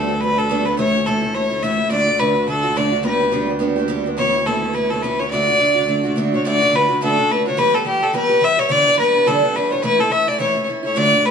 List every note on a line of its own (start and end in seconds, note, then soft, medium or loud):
0.00 1.91 D2 medium
0.00 0.22 A4 medium
0.09 0.21 A3 soft
0.09 0.22 B3 soft
0.09 0.21 D4 soft
0.21 0.37 G3 soft
0.21 0.38 A3 medium
0.21 0.37 B3 medium
0.21 0.35 D4 medium
0.21 0.39 B4 loud
0.36 0.49 A3 soft
0.36 0.50 B3 medium
0.36 0.49 D4 medium
0.36 0.67 A4 medium
0.49 0.66 G3 medium
0.49 0.66 A3 medium
0.49 0.66 B3 medium
0.49 0.64 D4 medium
0.65 0.78 A3 soft
0.65 0.78 B3 soft
0.65 0.77 D4 medium
0.65 0.78 B4 medium
0.77 0.94 A2 medium
0.77 0.94 E3 medium
0.77 0.94 A3 medium
0.77 0.93 C#4 medium
0.77 0.92 E4 medium
0.77 1.08 C#5 loud
0.93 1.06 A3 soft
0.93 1.06 C#4 soft
0.93 1.06 E4 soft
1.06 1.22 A2 medium
1.06 1.22 E3 medium
1.06 1.23 A3 medium
1.06 1.22 C#4 medium
1.06 1.20 E4 medium
1.06 1.36 A4 medium
1.21 1.33 A3 soft
1.21 1.34 C#4 soft
1.21 1.34 E4 medium
1.33 1.50 E3 medium
1.33 1.51 A3 medium
1.33 1.50 C#4 medium
1.33 1.49 E4 medium
1.33 1.64 C#5 medium
1.50 1.63 A3 soft
1.50 1.63 C#4 medium
1.50 1.62 E4 medium
1.62 1.79 A2 medium
1.62 1.79 E3 medium
1.62 1.79 A3 medium
1.62 1.78 C#4 medium
1.62 1.76 E4 medium
1.62 1.91 E5 medium
1.77 1.90 A3 soft
1.77 1.91 C#4 soft
1.77 1.90 E4 medium
1.90 2.06 D2 medium
1.90 6.48 D2 medium
1.90 2.07 A2 medium
1.90 2.07 D3 medium
1.90 2.07 A3 medium
1.90 2.06 D4 medium
1.90 2.05 F#4 medium
1.90 2.21 D5 loud
2.06 2.18 D3 soft
2.06 2.19 A3 soft
2.06 2.19 D4 soft
2.06 2.19 F#4 soft
2.19 2.35 D2 medium
2.19 2.36 A2 medium
2.19 2.36 D3 medium
2.19 2.35 A3 medium
2.19 2.34 D4 medium
2.19 2.32 F#4 medium
2.19 2.48 B4 medium
2.33 2.45 D3 soft
2.33 2.46 A3 soft
2.33 2.48 D4 soft
2.33 2.47 F#4 soft
2.47 2.63 D3 medium
2.47 2.64 A3 medium
2.47 2.63 D4 medium
2.47 2.62 F#4 medium
2.47 2.79 A4 medium
2.63 2.75 D3 soft
2.63 2.76 A3 soft
2.63 2.76 D4 soft
2.63 2.76 F#4 medium
2.75 2.92 D2 medium
2.75 2.92 A2 medium
2.75 2.93 D3 medium
2.75 2.92 A3 medium
2.75 2.91 D4 medium
2.75 2.90 F#4 medium
2.75 3.05 D5 medium
2.91 3.03 D3 soft
2.91 3.03 A3 soft
2.91 3.03 D4 soft
2.91 3.04 F#4 medium
3.03 3.20 G3 medium
3.03 3.20 B3 medium
3.03 3.20 D4 medium
3.03 3.18 G4 medium
3.03 3.46 B4 medium
3.19 3.31 B3 soft
3.19 3.32 D4 soft
3.19 3.32 G4 soft
3.32 3.48 G3 medium
3.32 3.49 B3 medium
3.32 3.48 D4 medium
3.32 3.46 G4 medium
3.47 3.59 B3 soft
3.47 3.60 D4 soft
3.47 3.60 G4 medium
3.59 3.76 G3 medium
3.59 3.77 B3 medium
3.59 3.77 D4 medium
3.59 3.75 G4 medium
3.76 3.87 B3 soft
3.76 3.88 D4 medium
3.76 3.88 G4 medium
3.88 4.05 G3 medium
3.88 4.05 B3 medium
3.88 4.05 D4 medium
3.88 4.03 G4 medium
4.04 4.17 B3 soft
4.04 4.18 D4 medium
4.04 4.17 G4 soft
4.17 4.34 A2 medium
4.17 4.34 E3 medium
4.17 4.34 B3 medium
4.17 4.34 C#4 medium
4.17 4.32 E4 medium
4.17 4.48 C#5 loud
4.33 4.46 B3 soft
4.33 4.46 C#4 soft
4.33 4.46 E4 soft
4.46 4.62 A2 medium
4.46 4.63 E3 medium
4.46 4.63 B3 medium
4.46 4.63 C#4 medium
4.46 4.61 E4 medium
4.46 4.76 A4 medium
4.62 4.74 B3 soft
4.62 4.74 C#4 soft
4.62 4.75 E4 soft
4.73 4.90 E3 medium
4.73 4.91 B3 medium
4.73 4.91 C#4 medium
4.73 4.89 E4 medium
4.73 4.92 B4 medium
4.90 5.03 B3 soft
4.90 5.03 C#4 medium
4.90 5.03 E4 medium
4.90 5.04 A4 medium
5.02 5.19 A2 medium
5.02 5.19 E3 medium
5.02 5.20 B3 medium
5.02 5.20 C#4 medium
5.02 5.18 E4 medium
5.02 5.21 B4 medium
5.19 5.33 B3 soft
5.19 5.33 C#4 soft
5.19 5.32 E4 soft
5.19 5.30 C#5 medium
5.30 5.48 D2 medium
5.30 5.48 A2 medium
5.30 5.48 D3 medium
5.30 5.49 A3 medium
5.30 5.47 D4 medium
5.30 5.46 F#4 medium
5.30 6.12 D5 loud
5.48 5.59 D3 soft
5.48 5.60 A3 soft
5.48 5.59 D4 soft
5.48 5.60 F#4 medium
5.59 5.76 D2 medium
5.59 5.76 A2 medium
5.59 5.76 D3 medium
5.59 5.76 A3 medium
5.59 5.75 D4 medium
5.59 5.73 F#4 medium
5.74 5.85 D3 soft
5.74 5.87 A3 medium
5.74 5.88 D4 medium
5.74 5.87 F#4 soft
5.86 6.03 D3 medium
5.86 6.04 A3 medium
5.86 6.03 D4 medium
5.86 6.02 F#4 medium
6.03 6.16 D3 soft
6.03 6.16 A3 medium
6.03 6.16 D4 medium
6.03 6.16 F#4 medium
6.16 6.32 D2 medium
6.16 6.32 A2 medium
6.16 6.33 D3 medium
6.16 6.33 A3 medium
6.16 6.32 D4 medium
6.16 6.31 F#4 medium
6.32 6.44 D3 soft
6.32 6.45 A3 soft
6.32 6.45 D4 medium
6.32 6.44 F#4 medium
6.32 6.45 C#5 medium
6.45 6.61 D2 medium
6.45 6.61 A2 medium
6.45 6.61 D3 medium
6.45 6.61 A3 medium
6.45 6.60 D4 medium
6.45 6.58 F#4 loud
6.45 6.77 D5 loud
6.59 6.70 D3 soft
6.59 6.71 A3 medium
6.59 6.72 D4 medium
6.59 6.72 F#4 medium
6.71 6.88 D3 medium
6.71 6.89 A3 medium
6.71 6.88 D4 medium
6.71 6.87 F#4 medium
6.75 7.02 B4 loud
6.88 7.01 D3 soft
6.88 7.01 A3 medium
6.88 7.01 D4 soft
6.88 7.00 F#4 medium
7.01 7.17 D2 medium
7.01 7.17 A2 medium
7.01 7.18 D3 medium
7.01 7.18 A3 medium
7.01 7.18 D4 loud
7.01 7.16 F#4 medium
7.01 7.33 A4 loud
7.18 7.28 D3 soft
7.18 7.29 A3 medium
7.18 7.30 D4 medium
7.18 7.29 F#4 medium
7.29 7.45 D3 medium
7.29 7.46 A3 medium
7.29 7.46 D4 medium
7.29 7.44 F#4 medium
7.29 7.46 B4 loud
7.46 7.57 D3 soft
7.46 7.58 A3 medium
7.46 7.58 D4 medium
7.46 7.58 F#4 medium
7.46 7.60 C#5 medium
7.57 7.73 E3 medium
7.57 7.74 G3 medium
7.57 7.74 B3 medium
7.57 7.72 G4 medium
7.57 7.76 B4 loud
7.73 7.85 G3 soft
7.73 7.86 B3 soft
7.73 7.85 G4 medium
7.73 7.86 A4 medium
7.85 8.01 E3 medium
7.85 8.02 G3 medium
7.85 8.01 B3 medium
7.85 8.04 G4 medium
7.85 8.00 G4 medium
8.01 8.12 G3 soft
8.01 8.13 B3 medium
8.01 8.13 G4 medium
8.01 8.14 A4 medium
8.13 8.29 E3 medium
8.13 8.30 G3 medium
8.13 8.30 B3 medium
8.13 8.28 G4 medium
8.13 8.46 B4 loud
8.29 8.40 G3 medium
8.29 8.42 B3 medium
8.29 8.42 G4 medium
8.41 8.57 E3 medium
8.41 8.58 G3 medium
8.41 8.57 B3 medium
8.41 8.61 E5 loud
8.57 8.69 G3 medium
8.57 8.69 B3 soft
8.57 8.69 G4 medium
8.57 8.73 C#5 loud
8.69 8.85 G2 medium
8.69 8.85 D3 medium
8.69 8.86 E3 medium
8.69 8.86 G3 medium
8.69 8.85 B3 medium
8.69 8.84 D4 loud
8.69 8.99 D5 loud
8.85 8.96 E3 soft
8.85 8.97 G3 medium
8.85 8.98 B3 soft
8.85 8.98 D4 medium
8.97 9.13 E3 medium
8.97 9.14 G3 medium
8.97 9.14 B3 medium
8.97 9.13 D4 medium
8.97 9.28 B4 loud
9.14 9.26 E3 soft
9.14 9.26 G3 soft
9.14 9.27 B3 medium
9.14 9.26 D4 soft
9.26 9.42 G2 medium
9.26 9.42 D3 medium
9.26 9.43 E3 medium
9.26 9.43 G3 medium
9.26 9.42 B3 medium
9.26 9.41 D4 medium
9.26 9.57 A4 loud
9.42 9.54 E3 soft
9.42 9.55 G3 medium
9.42 9.55 B3 medium
9.42 9.54 D4 medium
9.55 9.71 E3 medium
9.55 9.71 G3 medium
9.55 9.71 B3 medium
9.55 9.69 D4 medium
9.55 9.73 B4 medium
9.71 9.82 E3 soft
9.71 9.83 G3 medium
9.71 9.83 B3 medium
9.71 9.83 D4 medium
9.71 9.83 C#5 medium
9.83 9.98 A2 medium
9.83 9.99 E3 medium
9.83 9.99 A3 medium
9.83 9.99 C#4 medium
9.83 9.97 E4 medium
9.83 10.02 B4 loud
9.98 10.10 A3 soft
9.98 10.11 C#4 medium
9.98 10.11 E4 medium
9.98 10.13 A4 loud
10.10 10.26 E3 medium
10.10 10.27 A3 medium
10.10 10.27 C#4 medium
10.10 10.26 E4 medium
10.10 10.29 E5 loud
10.27 10.39 A3 soft
10.27 10.39 C#4 medium
10.27 10.39 E4 soft
10.27 10.39 D5 loud
10.39 10.55 A2 medium
10.39 10.55 E3 medium
10.39 10.55 A3 medium
10.39 10.55 C#4 medium
10.39 10.53 E4 medium
10.39 10.65 C#5 medium
10.54 10.67 A3 medium
10.54 10.67 C#4 soft
10.54 10.67 E4 medium
10.67 10.83 E3 medium
10.67 10.83 A3 medium
10.67 10.83 C#4 medium
10.67 10.82 E4 medium
10.83 10.95 A3 soft
10.83 10.96 C#4 soft
10.83 10.95 E4 medium
10.83 10.99 C#5 loud
10.95 11.11 D2 medium
10.95 11.11 A2 medium
10.95 11.11 D3 medium
10.95 11.12 A3 medium
10.95 11.12 D4 loud
10.95 11.10 F#4 loud
10.95 11.27 D5 loud
11.12 11.22 D3 soft
11.12 11.23 A3 soft
11.12 11.24 D4 medium
11.12 11.23 F#4 medium
11.23 11.31 D3 medium
11.23 11.31 A3 medium
11.23 11.31 D4 medium
11.23 11.31 F#4 medium
11.23 11.31 B4 loud